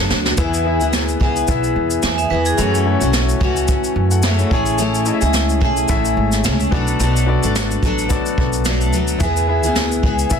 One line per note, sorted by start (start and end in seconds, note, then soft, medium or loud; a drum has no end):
0.00 0.38 B2 medium
0.00 0.37 F#3 medium
0.00 0.37 A3 medium
0.00 0.37 D4 medium
0.00 0.38 A4 medium
0.10 0.33 D2 medium
0.10 snare medium
0.25 snare medium
0.37 0.81 E2 loud
0.37 0.80 E3 medium
0.37 0.80 B3 medium
0.37 0.59 B3 medium
0.37 0.79 E4 medium
0.37 0.59 E4 medium
0.37 0.78 G#4 medium
0.37 0.59 G#4 medium
0.37 0.60 E5 medium
0.37 kick loud
0.37 shaker medium
0.54 shaker medium
0.65 1.27 B3 medium
0.65 1.27 E4 medium
0.65 1.27 G#4 medium
0.65 1.28 E5 medium
0.79 1.14 D2 medium
0.79 1.19 B3 soft
0.79 1.20 E4 medium
0.79 1.20 G#4 medium
0.79 shaker medium
0.93 snare loud
0.93 shaker medium
1.09 shaker soft
1.20 1.43 C#2 medium
1.20 2.02 E3 medium
1.20 2.02 B3 medium
1.20 2.04 E4 medium
1.20 2.03 G#4 medium
1.20 kick medium
1.36 shaker soft
1.48 1.71 B1 medium
1.48 2.29 B3 medium
1.48 2.30 E4 medium
1.48 2.30 G#4 medium
1.48 2.30 E5 medium
1.48 kick medium
1.48 shaker medium
1.64 shaker soft
1.76 1.98 E2 medium
1.91 shaker medium
2.03 2.26 E2 medium
2.03 2.29 E3 medium
2.03 2.29 B3 medium
2.03 2.30 E4 medium
2.03 2.30 G#4 medium
2.03 2.18 G#5 medium
2.03 snare loud
2.03 shaker medium
2.18 2.30 E5 medium
2.18 shaker soft
2.30 2.54 E2 medium
2.30 2.57 E3 medium
2.30 2.58 B3 medium
2.30 2.58 E4 medium
2.30 2.58 G#4 medium
2.30 2.45 B4 medium
2.45 2.72 G#4 medium
2.45 shaker medium
2.57 3.01 F#2 medium
2.57 2.93 F#2 loud
2.57 3.01 C#3 medium
2.57 3.01 E3 medium
2.57 2.79 A3 medium
2.57 3.00 A3 medium
2.57 3.00 C#4 loud
2.57 2.79 E4 medium
2.57 2.99 F#4 medium
2.57 2.80 F#4 medium
2.57 2.80 C#5 medium
2.57 shaker medium
2.75 shaker medium
2.86 3.47 A3 medium
2.86 3.48 E4 medium
2.86 3.48 F#4 medium
2.86 3.48 C#5 medium
3.00 3.34 B1 medium
3.00 3.39 E3 soft
3.00 3.40 A3 medium
3.00 3.40 C#4 medium
3.00 3.41 F#4 medium
3.00 shaker medium
3.13 snare loud
3.13 shaker medium
3.29 shaker soft
3.40 3.76 C#2 medium
3.40 4.23 E3 medium
3.40 4.24 A3 medium
3.40 4.25 C#4 medium
3.40 4.25 F#4 medium
3.40 kick medium
3.56 shaker soft
3.68 kick medium
3.68 shaker medium
3.84 shaker soft
3.96 4.41 F#2 loud
4.11 4.24 A4 medium
4.11 4.23 F#5 medium
4.11 shaker medium
4.23 4.51 E3 medium
4.23 4.50 A3 medium
4.23 4.51 C#4 medium
4.23 4.52 F#4 medium
4.23 4.38 E5 medium
4.23 snare loud
4.23 shaker medium
4.39 4.49 E4 medium
4.39 4.51 C#5 medium
4.39 shaker soft
4.50 5.09 A1 loud
4.50 4.96 A3 medium
4.50 4.77 A3 medium
4.50 4.78 C#4 medium
4.50 4.96 E4 medium
4.50 4.78 E4 medium
4.50 4.97 G#4 medium
4.50 4.78 G#4 medium
4.50 4.97 C#5 loud
4.50 kick loud
4.66 shaker soft
4.78 5.21 A3 medium
4.78 5.22 C#4 medium
4.78 5.21 E4 medium
4.78 5.20 G#4 medium
4.78 shaker medium
4.94 shaker medium
5.06 5.67 A3 medium
5.06 5.68 E4 medium
5.06 5.68 G#4 medium
5.06 5.14 D#5 medium
5.06 shaker soft
5.14 5.72 E5 medium
5.21 5.62 C#2 medium
5.21 5.60 C#4 soft
5.21 5.61 E4 soft
5.21 5.61 G#4 medium
5.21 shaker medium
5.33 snare loud
5.33 shaker medium
5.49 shaker soft
5.61 5.84 B1 medium
5.61 6.44 A3 medium
5.61 6.44 C#4 medium
5.61 6.45 E4 medium
5.61 6.45 G#4 medium
5.61 kick medium
5.77 shaker medium
5.88 6.12 A1 loud
5.88 6.70 A3 medium
5.88 6.71 E4 medium
5.88 6.71 G#4 medium
5.88 6.71 E5 loud
5.88 kick medium
5.88 shaker medium
6.05 shaker soft
6.17 6.46 G#1 medium
6.32 snare soft
6.32 shaker medium
6.44 6.67 C#2 loud
6.44 6.71 A3 medium
6.44 6.72 C#4 medium
6.44 6.73 E4 medium
6.44 6.73 G#4 medium
6.44 snare loud
6.44 shaker medium
6.60 shaker soft
6.71 6.95 B1 medium
6.71 6.99 F#3 medium
6.71 6.99 A3 medium
6.71 7.17 B3 medium
6.71 7.00 D4 medium
6.71 7.17 F#4 medium
6.71 7.18 A4 medium
6.71 7.00 A4 medium
6.71 7.18 D5 medium
6.71 kick loud
6.87 shaker soft
7.00 7.35 B1 loud
7.00 7.42 B2 medium
7.00 7.43 F#3 medium
7.00 7.43 A3 medium
7.00 7.42 D4 loud
7.00 7.41 A4 medium
7.00 shaker medium
7.16 shaker medium
7.26 7.88 B3 medium
7.26 7.88 F#4 medium
7.26 7.89 A4 medium
7.26 7.89 D5 medium
7.42 7.76 G#1 loud
7.42 7.82 A3 soft
7.42 7.83 D4 medium
7.42 7.82 A4 medium
7.42 shaker medium
7.56 snare loud
7.56 shaker medium
7.71 shaker soft
7.82 8.18 A1 medium
7.82 8.64 F#3 medium
7.82 8.65 A3 medium
7.82 8.66 D4 medium
7.82 8.66 A4 medium
7.82 kick medium
7.82 shaker soft
7.98 shaker soft
8.09 8.91 B3 medium
8.09 8.91 F#4 medium
8.09 8.91 A4 medium
8.09 8.92 D5 medium
8.09 kick loud
8.09 shaker medium
8.26 shaker soft
8.38 8.93 B1 loud
8.38 kick loud
8.53 shaker medium
8.65 8.92 F#3 medium
8.65 8.93 A3 medium
8.65 8.93 D4 medium
8.65 8.94 A4 medium
8.65 snare loud
8.65 shaker medium
8.81 shaker soft
8.93 9.16 D2 medium
8.93 9.20 F#3 medium
8.93 9.21 A3 medium
8.93 9.21 D4 medium
8.93 9.22 A4 medium
8.93 shaker medium
9.08 shaker soft
9.19 9.63 E2 loud
9.19 9.63 E3 medium
9.19 9.41 B3 medium
9.19 9.64 B3 medium
9.19 9.41 E4 medium
9.19 9.64 E4 loud
9.19 9.41 G#4 medium
9.19 9.62 G#4 medium
9.19 9.42 E5 medium
9.19 kick loud
9.19 shaker medium
9.37 shaker medium
9.47 10.09 B3 medium
9.47 10.10 E4 medium
9.47 10.10 G#4 medium
9.47 10.10 E5 medium
9.63 9.96 D2 medium
9.63 10.02 B3 soft
9.63 10.03 E4 soft
9.63 10.04 G#4 medium
9.63 shaker medium
9.76 snare loud
9.76 shaker medium
9.92 shaker soft
10.03 10.26 C#2 medium
10.03 10.40 E3 medium
10.03 10.40 B3 medium
10.03 10.40 E4 medium
10.03 10.40 G#4 medium
10.03 kick medium
10.19 shaker medium
10.30 10.40 B1 medium
10.30 10.40 B3 medium
10.30 10.40 E4 medium
10.30 10.40 G#4 medium
10.30 10.40 E5 medium
10.30 kick medium
10.30 shaker medium